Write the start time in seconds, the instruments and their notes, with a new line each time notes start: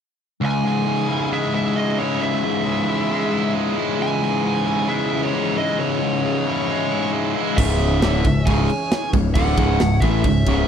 0.40 distorted electric guitar C#2, analog synth pad E3 C#4 G#4 E5
0.46 lead electric guitar G#5
0.64 distorted electric guitar G#2
0.86 distorted electric guitar G#2 C#3
1.09 distorted electric guitar C#3 E4
1.32 distorted electric guitar G#3, lead electric guitar E5
1.54 distorted electric guitar G#2 E4, lead electric guitar E5
1.76 distorted electric guitar C#3 G#3, lead electric guitar D#5
1.99 distorted electric guitar G#3 E4, lead electric guitar C#5
2.20 distorted electric guitar C#2, lead electric guitar E5
2.45 distorted electric guitar G#2
2.66 distorted electric guitar G#2 C#3
2.88 distorted electric guitar C#3 E4
3.10 distorted electric guitar G#3
3.32 distorted electric guitar G#2 E4
3.54 distorted electric guitar C#3 G#3
3.76 distorted electric guitar G#3 E4
3.99 distorted electric guitar C#2, lead electric guitar G#5
4.22 distorted electric guitar G#2
4.44 distorted electric guitar G#2 C#3
4.65 distorted electric guitar C#3 E4
4.89 distorted electric guitar G#3, lead electric guitar E5
5.12 distorted electric guitar G#2 E4
5.24 lead electric guitar C#5
5.34 distorted electric guitar C#3 G#3
5.58 distorted electric guitar G#3 E4, lead electric guitar D#5
5.80 distorted electric guitar C#2, lead electric guitar C#5
6.02 distorted electric guitar G#2
6.23 distorted electric guitar G#2 C#3
6.46 distorted electric guitar C#3 E4
6.70 distorted electric guitar G#3
6.91 distorted electric guitar G#2 E4
7.13 distorted electric guitar C#3 G#3
7.36 distorted electric guitar G#3 E4
7.57 picked electric bass C#1, distorted electric guitar C#2 G#2 C#3, analog synth pad E3 C#4 G#4 C#5, lead electric guitar E5, kick, crash
7.80 crash
8.02 picked electric bass D1, distorted electric guitar D2 A2 D3, snare, crash
8.25 picked electric bass C#1, distorted electric guitar C#2 G#2, kick, crash
8.46 picked electric bass C#1, distorted electric guitar C#2 G#2 C#3, lead electric guitar G#5, kick, crash
8.70 crash
8.91 snare, crash
9.13 picked electric bass C#1, distorted electric guitar C#2 G#2, kick, crash
9.34 picked electric bass D1, distorted electric guitar D2 A2 D3, lead electric guitar F#5, kick, crash
9.57 picked electric bass C#1, distorted electric guitar C#2 G#2 C#3, kick, crash
9.80 picked electric bass C#1, distorted electric guitar C#2 G#2, snare, crash
10.00 picked electric bass A1, distorted electric guitar A2 E3 A3, lead electric guitar E5, kick, crash
10.24 picked electric bass C#1, distorted electric guitar C#2 G#2, kick, crash
10.47 picked electric bass C#1, distorted electric guitar C#2 G#2 C#3, kick, crash